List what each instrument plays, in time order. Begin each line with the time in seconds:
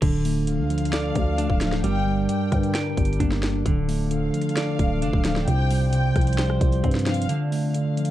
0.02 808-style bass D1, clean electric guitar D3, tine electric piano D3, brass ensemble F3 D4 A4, kick, closed hi-hat, crash
0.25 tine electric piano A3, open hi-hat
0.47 tine electric piano D3, violin section F5, closed hi-hat
0.59 808-style bass D2
0.70 tine electric piano F3, closed hi-hat
0.78 closed hi-hat
0.85 closed hi-hat
0.93 tine electric piano D3, clean electric guitar D5, snare, closed hi-hat
1.15 808-style bass D2, tine electric piano A3, kick, closed hi-hat
1.38 clean electric guitar D4, tine electric piano D4, closed hi-hat
1.50 808-style bass D1, kick
1.61 tine electric piano F3, snare, closed hi-hat
1.72 snare
1.84 808-style bass G1, tine electric piano G2, brass ensemble G3 A#4, clean electric guitar G3, violin section G5, closed hi-hat
2.07 tine electric piano G3
2.29 tine electric piano G2, violin section G5, closed hi-hat
2.52 808-style bass G2, tine electric piano D3, kick, cross-stick, closed hi-hat
2.63 closed hi-hat
2.75 tine electric piano G2, clean electric guitar G5, snare, closed hi-hat
2.97 808-style bass G1, tine electric piano G3, kick, closed hi-hat
3.05 closed hi-hat
3.13 closed hi-hat
3.20 808-style bass G1, tine electric piano A#3, clean electric guitar D4, kick, closed hi-hat
3.32 snare
3.43 tine electric piano D3, snare
3.66 808-style bass D1, tine electric piano D3, clean electric guitar D3, brass ensemble F3 A4, kick, closed hi-hat
3.88 tine electric piano A3, open hi-hat
4.11 tine electric piano D3, violin section F5, closed hi-hat
4.34 tine electric piano F3, closed hi-hat
4.42 closed hi-hat
4.49 closed hi-hat
4.57 tine electric piano D3, clean electric guitar D5, snare, closed hi-hat
4.79 808-style bass D1, tine electric piano A3, kick, closed hi-hat
5.02 808-style bass F1, tine electric piano D4, clean electric guitar D4, closed hi-hat
5.13 808-style bass D1, kick
5.25 tine electric piano F3, snare, closed hi-hat
5.36 snare
5.47 808-style bass C2, clean electric guitar C3, tine electric piano C3, brass ensemble G3 F4 C5, violin section G5, closed hi-hat
5.70 tine electric piano G3, open hi-hat
5.93 tine electric piano C3, violin section G5, closed hi-hat
6.16 808-style bass C2, tine electric piano F3, kick, cross-stick, closed hi-hat
6.21 closed hi-hat
6.27 closed hi-hat
6.33 closed hi-hat
6.38 tine electric piano C3, clean electric guitar C5, snare, closed hi-hat
6.50 cross-stick
6.61 808-style bass C2, tine electric piano G3, kick, closed hi-hat
6.72 closed hi-hat
6.84 808-style bass G2, clean electric guitar C4, tine electric piano C4, kick, closed hi-hat
6.91 snare, closed hi-hat
6.99 closed hi-hat
7.06 tine electric piano F3, violin section F5, snare, closed hi-hat
7.14 closed hi-hat
7.22 closed hi-hat
7.29 clean electric guitar D3, tine electric piano D3, brass ensemble A3 D5, closed hi-hat
7.52 tine electric piano A3, open hi-hat
7.74 tine electric piano D3, violin section F5, closed hi-hat
7.97 tine electric piano F3, closed hi-hat
8.05 closed hi-hat